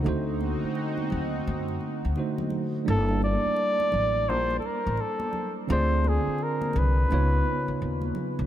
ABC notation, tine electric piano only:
X:1
M:4/4
L:1/8
Q:"Swing 16ths" 1/4=85
K:Dm
V:1 name="Tine electric piano"
[D,A,_E^Fc]6 [D,A,EFc]2 | [G,B,DEa]8 | [D,CF_Ad]4 [^C,=B,^D^E^c]4 |]